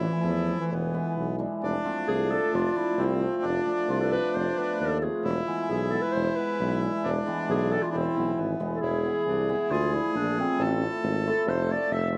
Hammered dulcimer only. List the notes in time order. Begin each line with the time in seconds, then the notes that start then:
0.01 E3 A3 C4
0.47 E3 A3 C4
0.94 E3 G#3 B3
1.39 E3 G#3 D4
1.84 F3 A3 C4
2.30 F3 A3 D4
2.75 F3 A3 C4
3.20 F3 A3 C4
3.66 F3 A3 D4
4.11 F3 A3 C4
4.57 F3 A3 B3
5.02 F3 A3 C4
5.47 E3 G#3 B3
5.92 E3 G#3 B3
6.37 E3 G#3 B3
6.81 E3 G#3 D4
7.26 E3 G#3 B3
7.72 E3 G#3 B3
8.16 E3 G#3 B3
8.60 E3 G#3 B3
9.04 E3 G#3 B3
9.49 E3 G#3 B3
9.92 F3 A3 D4
10.38 F3 A3 B3
10.81 A3 C4 E4
11.26 A3 C4 E4
11.69 A3 C4 F4
12.12 A3 C4 F4